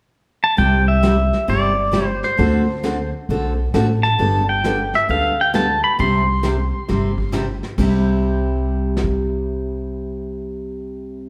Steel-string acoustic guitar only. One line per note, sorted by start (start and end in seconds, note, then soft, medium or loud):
0.57 0.80 C3 medium
0.57 0.81 G3 medium
0.57 0.81 C4 medium
0.57 0.81 E4 medium
0.57 0.81 G4 medium
1.03 1.15 C3 medium
1.03 1.15 G3 medium
1.03 1.15 C4 medium
1.03 1.15 E4 medium
1.03 1.15 G4 medium
1.47 1.71 C3 medium
1.47 1.71 G3 medium
1.47 1.71 C4 medium
1.47 1.71 E4 medium
1.47 1.71 G4 medium
1.92 2.05 C3 medium
1.92 2.05 G3 medium
1.92 2.05 C4 medium
1.92 2.05 E4 medium
1.92 2.06 G4 medium
2.37 2.61 D3 medium
2.37 2.61 A3 medium
2.37 2.61 C4 medium
2.37 2.62 F#4 medium
2.37 2.61 A4 medium
2.83 2.96 D3 medium
2.83 2.96 A3 medium
2.83 2.96 C4 medium
2.83 2.96 F#4 medium
2.83 2.96 A4 medium
3.30 3.52 D3 medium
3.30 3.52 A3 medium
3.30 3.52 C4 medium
3.30 3.52 F#4 medium
3.30 3.52 A4 medium
3.74 3.86 D3 medium
3.74 3.86 A3 medium
3.74 3.86 C4 medium
3.74 3.86 F#4 medium
3.74 3.86 A4 medium
4.19 4.41 G3 medium
4.19 4.41 B3 medium
4.19 4.42 D4 medium
4.19 4.42 A4 medium
4.65 4.76 G3 medium
4.65 4.77 B3 medium
4.65 4.77 D4 medium
4.65 4.77 A4 medium
5.09 5.31 G3 medium
5.09 5.32 B3 medium
5.09 5.32 D4 medium
5.09 5.32 A4 medium
5.54 5.66 G3 medium
5.54 5.66 B3 medium
5.54 5.66 D4 medium
5.54 5.66 A4 medium
5.99 6.21 C3 medium
5.99 6.21 G3 medium
5.99 6.21 C4 medium
5.99 6.22 E4 medium
5.99 6.22 G4 medium
6.43 6.55 C3 medium
6.43 6.55 G3 medium
6.43 6.55 C4 medium
6.43 6.55 E4 medium
6.43 6.55 G4 medium
6.89 7.11 C3 medium
6.89 7.11 G3 medium
6.89 7.11 C4 medium
6.89 7.11 E4 medium
6.89 7.11 G4 medium
7.32 7.44 C3 medium
7.32 7.44 G3 medium
7.32 7.45 C4 medium
7.32 7.45 E4 medium
7.32 7.45 G4 medium
7.78 11.29 C3 medium
7.78 11.29 G3 medium
7.78 11.29 C4 medium
7.78 11.29 E4 medium
7.78 11.29 G4 medium